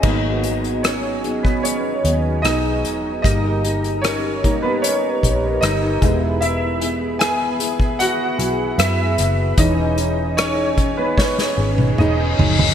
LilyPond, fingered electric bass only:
\new Staff \with { instrumentName = "Fingered electric bass" } { \clef bass \time 4/4 \key gis \minor \tempo 4 = 75 gis,,2~ gis,,8 dis,8 b,,8 e,,8 | g,,2~ g,,8 ais,,8 g,,8 e,,8~ | e,,2~ e,,8 b,,8 fis,8 fis,,8 | e,,2~ e,,8 gis,,8 e,,8 fis,,8 | }